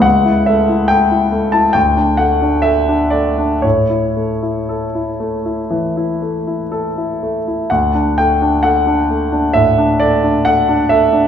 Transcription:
\new Staff \with { instrumentName = "Grand piano" } { \time 4/4 \key d \major \tempo 4 = 65 << { fis''8 e''8 g''8. a''16 g''8 fis''8 e''8 d''8 | cis''2. r4 | fis''8 g''8 fis''4 e''8 d''8 fis''8 e''8 | } \\ { cis,16 e'16 a16 e'16 a'16 e'16 a16 e'16 d,16 d'16 a16 d'16 a'16 d'16 a16 d'16 | a,16 e'16 a16 e'16 a'16 e'16 a16 e'16 e16 e'16 a16 e'16 a'16 e'16 a16 e'16 | d,16 d'16 a16 d'16 a'16 d'16 a16 d'16 a,16 d'16 a16 d'16 a'16 d'16 a16 d'16 | } >> }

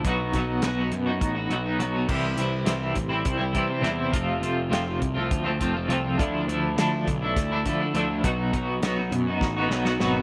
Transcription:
<<
  \new Staff \with { instrumentName = "Clean electric guitar" } { \time 7/8 \key b \minor \tempo 4 = 102 <b, fis b dis' fis'>8 <fis b dis' fis'>8 <b, fis b dis' fis'>16 <b dis' fis'>8 <b dis' fis'>8 <b dis' fis'>16 <fis b dis' fis'>16 <b dis' fis'>16 <b, fis b dis' fis'>16 <b dis' fis'>16 | <c e g c' e'>8 <e g c' e'>8 <c e g c' e'>16 <g c' e'>8 <g c' e'>8 <g c' e'>16 <e g c' e'>16 <g c' e'>16 <c e g c' e'>16 <g c' e'>16 | <f, c f a c' f'>8 <f a c' f'>8 <f, c f a c' f'>16 <f a c' f'>8 <f a c' f'>8 <f a c' f'>16 <f a c' f'>16 <f a c' f'>16 <f, c f a c' f'>16 <f a c' f'>16 | <d f a d' e'>8 <f a d' e'>8 <d f a d' e'>16 <a d' e'>8 <a d' e'>8 <a d' e'>16 <f a d' e'>16 <a d' e'>16 <d f a d' e'>16 <a d' e'>16 |
<b, fis b dis' fis'>8 <fis b dis' fis'>8 <b, fis b dis' fis'>16 <b dis' fis'>8 <b dis' fis'>8 <b dis' fis'>16 <fis b dis' fis'>16 <b dis' fis'>16 <b, fis b dis' fis'>16 <b dis' fis'>16 | }
  \new Staff \with { instrumentName = "Picked electric bass" } { \clef bass \time 7/8 \key b \minor b,,8 b,,8 b,,8 fis,8 a,,8 b,,8 b,,8 | c,8 c,8 c,8 a,,8 c,8 c8 e,8 | f,,8 f,,8 f,,8 c,8 d,8 f,,8 c,8 | d,8 d,8 d,8 b,,8 d,8 d8 d,8 |
b,,8 b,,8 b,,8 fis,8 a,,8 b,,8 gis,,8 | }
  \new DrumStaff \with { instrumentName = "Drums" } \drummode { \time 7/8 <hh bd>8 <hh bd sn>8 <hh sn>8 hh8 <hh bd>8 hh8 hh8 | <cymc bd>8 <hh sn>8 <hh sn>8 <hh bd>8 <hh bd>8 <hh bd>8 <hh sn>8 | <hh bd>8 hh8 <hh sn>8 <hh bd>8 <hh bd>8 <hh bd>8 hh8 | <hh bd>8 hh8 <hh sn>8 <hh bd>8 <hh bd sn>8 <hh bd>8 hh8 |
<hh bd>8 <hh bd>8 <hh sn>8 hh8 <bd sn>8 sn16 sn16 sn8 | }
>>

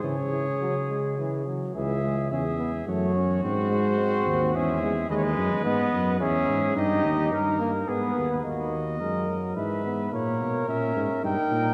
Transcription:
<<
  \new Staff \with { instrumentName = "Cornet" } { \time 3/4 \key cis \minor \tempo 4 = 107 cis''2~ cis''8 r8 | e''4 e''4 cis''4 | bis'2 e''4 | dis''32 cis''32 dis''8. dis''4 e''4 |
dis''4 ais'4 b'4 | dis''2 e''4 | cis''4 e''4 g''4 | }
  \new Staff \with { instrumentName = "Trumpet" } { \time 3/4 \key cis \minor gis'2~ gis'8 r8 | gis'4 gis'4 fis'4~ | fis'2 gis'4 | b'2 gis'4 |
g'4 ais'4 gis'4 | fis'4 ais'4 b'4 | ais'2 ais'4 | }
  \new Staff \with { instrumentName = "Trombone" } { \time 3/4 \key cis \minor e8 e8 fis8 gis8 e8 fis8 | e8 gis8 cis'8 b8 a8 cis'8 | bis8 gis8 bis4 cis'8 gis8 | gis4 b4 cis'4 |
dis'4. ais8 b4 | ais4 gis8 fis8 e8 b8 | ais4 cis'4 dis'4 | }
  \new Staff \with { instrumentName = "Tuba" } { \clef bass \time 3/4 \key cis \minor cis2~ cis8 r8 | cis,4 e,4 fis,4 | gis,4. dis,8 e,4 | dis,8 fis,8 gis,8 fis,8 e,8 gis,8 |
g,8 dis,8 g,4 gis,8 dis,8 | dis,4 fis,4 gis,4 | ais,8 b,8 ais,8 gis,8 g,8 ais,8 | }
>>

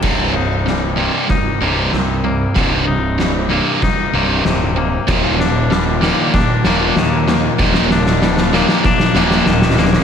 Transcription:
<<
  \new Staff \with { instrumentName = "Clean electric guitar" } { \time 4/4 \key c \minor \tempo 4 = 95 c,8 ees'8 g8 bes8 ees'8 bes8 c8 bes8 | c,8 ees'8 g8 bes8 ees'8 bes8 c8 bes8 | ees,8 d'8 g8 bes8 d'8 bes8 ees8 bes8 | ees,8 d'8 g8 bes8 d'8 bes8 ees8 bes8 | }
  \new Staff \with { instrumentName = "Distorted electric guitar" } { \clef bass \time 4/4 \key c \minor <c, g, c>8 <c, g,>8 <c, g,>8 <c, g, c>8 <c, g,>8 <c, g, c>8 <c, g,>8 <c, g,>8 | <c, g, c>8 <c, g,>8 <c, g,>8 <c, g, c>8 <c, g,>8 <c, g, c>8 <c, g,>8 <c, g,>8 | <ees, bes, ees>8 <ees, bes,>8 <ees, bes,>8 <ees, bes, ees>8 <ees, bes,>8 <ees, bes, ees>8 <ees, bes,>8 <ees, bes,>8 | <ees, bes, ees>8 <ees, bes,>8 <ees, bes,>8 <ees, bes, ees>8 <ees, bes,>8 <ees, bes, ees>8 <ees, bes,>8 <ees, bes,>8 | }
  \new Staff \with { instrumentName = "Fingered electric bass" } { \clef bass \time 4/4 \key c \minor c,,2 r8 c,,8 c,4 | c,,2 r8 c,,8 d,,4 | ees,,2 r8 ees,,8 ees,4 | ees,,2 r8 ees,,8 d,,4 | }
  \new DrumStaff \with { instrumentName = "Drums" } \drummode { \time 4/4 <cymc bd sn>4 sn4 <bd sn>4 sn4 | <bd sn>4 sn4 <bd sn>4 sn4 | <cymc bd sn>8 sn8 sn8 sn8 <bd sn>8 sn8 sn8 sn8 | <bd sn>16 sn16 sn16 sn16 sn16 sn16 sn16 sn16 <bd sn>16 sn16 sn16 sn16 sn16 sn32 sn32 sn32 sn32 sn16 | }
>>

